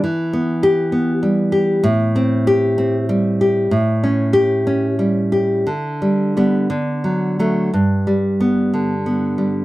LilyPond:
\new Staff \with { instrumentName = "Nylon-string guitar" } { \clef bass \time 6/8 \key g \major \tempo 4. = 63 << { r4 g'4 r4 | r4 g'4 r4 | r4 g'4 r4 | r4 b8 r4 a8 |
r4 b4 r4 | } \\ { e8 b4 b8 g8 g'8 | a,8 c'4 c'8 g8 g'8 | a,8 cis'4 cis'8 g8 g'8 | d8 g8 g8 d8 fis8 fis8 |
g,8 g4 d8 b8 g8 | } >> }